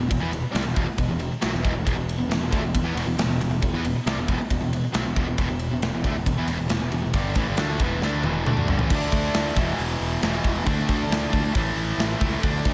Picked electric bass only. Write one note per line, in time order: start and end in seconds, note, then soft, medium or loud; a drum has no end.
0.01 0.10 E1 medium
0.11 0.21 E1 medium
0.23 0.32 E2 medium
0.33 0.43 E1 medium
0.54 0.65 C2 medium
0.67 0.76 E1 medium
0.77 0.87 E1 medium
0.89 muted picked electric bass stroke soft
0.99 1.09 E1 medium
1.11 1.20 E1 medium
1.21 1.31 E1 medium
1.44 1.52 B1 medium
1.53 1.63 E1 medium
1.65 1.74 E1 medium
1.75 1.85 E1 medium
1.87 1.96 E1 medium
1.96 2.17 E1 medium
2.17 2.27 E1 medium
2.27 2.38 E1 medium
2.38 2.50 E1 medium
2.52 2.60 D2 medium
2.60 2.72 E1 medium
2.75 2.82 E1 medium
2.83 2.94 E2 medium
2.95 3.05 E1 medium
3.05 3.16 E1 medium
3.17 3.28 E1 medium
3.28 3.39 E1 medium
3.41 3.49 E1 medium
3.50 3.61 E1 medium
3.63 3.73 E1 medium
3.73 3.84 E2 medium
3.84 3.95 E1 medium
3.96 muted picked electric bass stroke soft
4.06 4.15 C2 medium
4.16 4.27 E1 medium
4.28 4.38 E1 medium
4.51 4.61 E1 medium
4.61 4.72 E1 medium
4.73 4.83 E1 medium
4.95 5.05 B1 medium
5.06 5.16 E1 medium
5.17 5.27 E1 loud
5.28 5.38 E1 medium
5.38 5.49 E1 medium
5.51 5.70 E1 medium
5.71 5.81 E1 medium
5.83 5.92 E1 medium
5.93 6.03 E1 medium
6.04 6.15 D2 loud
6.15 6.26 E1 medium
6.26 6.36 E1 medium
6.37 6.47 E2 medium
6.48 6.58 E1 loud
6.59 6.69 E1 medium
6.70 6.80 E1 medium
6.81 6.91 E1 medium
6.92 7.02 E1 medium
7.04 7.13 E1 medium
7.14 7.35 G1 medium
7.36 7.46 A1 loud
7.48 7.57 G1 loud
7.58 7.78 D2 medium
7.80 8.01 E1 loud
8.02 8.23 D2 loud
8.24 8.45 E1 medium
8.47 8.67 D2 loud
8.69 8.78 G1 medium
8.79 8.89 A1 loud
8.90 9.06 D2 medium
9.12 9.28 D2 medium
9.35 9.50 D2 medium
9.56 9.72 E1 medium
9.79 9.94 E1 loud
10.00 10.16 E1 medium
10.22 10.38 E1 loud
10.45 10.60 E1 medium
10.66 10.82 D2 medium
10.89 11.04 D2 medium
11.09 11.25 D2 medium
11.33 11.48 D2 medium
11.55 11.70 A1 loud
11.76 11.91 A1 medium
11.98 12.13 A1 loud
12.21 12.36 C#2 medium
12.43 12.58 D2 medium
12.65 12.74 D2 loud